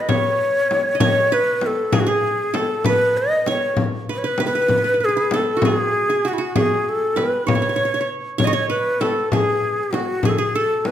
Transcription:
Already playing: F#4 A4 B4
0.00 D#5
0.09 C#5, frame drum
0.71 frame drum
0.95 D#5
1.00 C#5, frame drum
1.32 B4
1.61 frame drum
1.66 A4
1.93 G#4, frame drum
2.00 F#4
2.07 G#4
2.54 A4, frame drum
2.84 B4, frame drum
3.17 D#5
3.46 C#5, frame drum
3.77 frame drum
4.09 B4
4.18 C#5
4.24 B4
4.38 B4, frame drum
4.46 B4
4.55 B4
4.62 B4
4.68 B4, frame drum
4.78 B4
4.84 B4
4.94 B4
5.00 B4
5.05 G#4 B4
5.17 B4
5.31 A4, frame drum
5.36 A4
5.57 F#4
5.62 G#4, frame drum
6.10 G#4
6.25 F#4
6.33 E4
6.38 F#4
6.56 G#4, frame drum
6.89 A4
7.16 B4, frame drum
7.47 C#5, frame drum
7.55 C#5
7.62 C#5
7.69 C#5
7.76 C#5
7.85 C#5
7.94 C#5
8.01 C#5
8.38 C#5, frame drum
8.44 C#5 D#5
8.53 C#5
8.70 B4
9.01 A4, frame drum
9.32 G#4, frame drum
9.83 G#4
9.91 F#4, frame drum
10.23 G#4, frame drum
10.29 A4
10.38 G#4
10.55 A4
10.85 B4, frame drum

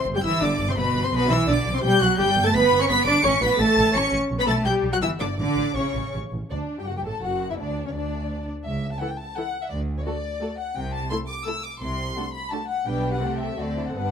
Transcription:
0.06 G1
0.15 G3 G4 G5 G6
0.23 G1 E3 E4 E5 E6
0.41 G1 D3 D4 D5 D6
0.59 G1
0.69 C3 C4 C5 C6
0.76 G1 B2 B3 B4 B5
0.94 G1
1.03 C3 C4 C5 C6
1.12 B1 B2 B3 B4 B5
1.30 B1 E3 E4 E5 E6
1.47 B1 D3 D4 D5 D6
1.65 B1
1.74 C3 C4 C5 C6
1.82 B1 G3 G4 G5 G6
2.01 B1 F#3 F#4 F#5 F#6
2.18 G1 G3 G4 G5 G6
2.37 G1
2.45 A3 A4 A5 A6
2.54 G1 B3 B4 B5 B6
2.72 G1
2.80 C#4 C#5 C#6 C#7
2.89 G1 B3 B4 B5 B6
3.06 G1 D4 D5 D6 D7
3.24 A1 C#4 C#5 C#6 C#7
3.42 A1 B3 B4 B5 B6
3.59 A1 A3 A4 A5 A6
3.77 A1
3.94 A1 C#4 C#5 C#6 C#7
4.13 A1
4.30 B1
4.38 B3 B4 B5 B6
4.47 B1 A3 A4 A5 A6
4.65 B1 G3 G4 G5 G6
4.83 B1
4.92 F#3 F#4 F#5 F#6
5.01 G1 E3 E4 E5 E6
5.20 G1 D3 D4 D5 D6
5.38 A1 D3 D4 D5 D6
5.56 A1
5.75 A1 C#3 C#4 C#5 C#6
5.95 A1
6.14 A1
6.32 A1
6.51 D2 D4 D5
6.79 G2 G4 G5
6.87 F#1 F#2 F#4 F#5
6.96 G2 G4 G5
7.05 A1 A2 A4 A5
7.23 F#1 F#2 F#4 F#5
7.50 E2 E4 E5
7.59 D2 D4 D5
7.85 C#2 C#4 C#5
7.94 D2 D4 D5
8.66 C#2 E5
8.93 A5
9.00 E3 E4 A4 F#5
9.10 G5
9.18 A5
9.36 E3 E4 A4 F#5
9.63 E5
9.71 D2 D5
9.98 C#5
10.06 A3 F#4 A4 D5
10.41 A3 F#4 A4
10.59 F#5
10.77 C2 C3 G5
10.94 A5
11.11 A3 E4 A4 C6
11.29 D6
11.46 A3 E4 A4 E6
11.64 D6
11.81 C2 C3 C6
12.17 A3 D4 F#4 A4
12.34 B5
12.52 A3 D4 F#4 A4 A5
12.69 F#5
12.86 B1 B2 G3 D4 G4 B4 G5
13.14 F#5
13.21 C2 C3 A3 C4 G4 A4
13.40 E5
13.58 D2 D3 A3 C4 F#4 A4 D5
13.77 E4
13.88 F#5
13.96 G1 G2 G3 B3 D4 B4 F#5

